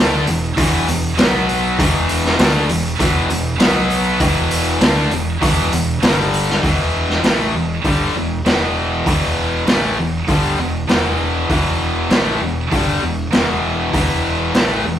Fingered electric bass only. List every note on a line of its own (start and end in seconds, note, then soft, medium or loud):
0.00 0.25 D2 medium
0.27 0.55 E1 medium
0.57 0.85 E1 medium
0.88 1.16 E1 medium
1.19 1.75 B1 medium
1.78 2.35 E1 medium
2.39 2.67 D2 loud
2.69 2.97 E1 medium
3.00 3.28 E1 medium
3.30 3.58 E1 medium
3.60 4.17 B1 medium
4.20 4.77 E1 medium
4.81 5.09 D2 medium
5.11 5.39 E1 medium
5.42 5.70 E1 medium
5.71 6.00 E1 medium
6.02 6.59 G1 medium
6.63 7.20 E1 medium
7.23 7.52 A1 medium
7.54 7.83 E1 medium
7.84 8.13 G1 medium
8.15 8.43 E1 medium
8.46 9.02 E1 medium
9.06 9.63 E1 medium
9.67 9.96 A1 loud
9.98 10.26 E1 medium
10.28 10.56 G1 medium
10.58 10.87 E1 medium
10.88 11.46 E1 medium
11.49 12.07 E1 medium
12.10 12.39 A1 medium
12.41 12.69 E1 medium
12.71 13.00 G1 medium
13.02 13.31 E1 medium
13.33 13.90 E1 medium
13.93 14.50 E1 medium
14.55 14.83 A1 loud
14.85 14.99 E1 medium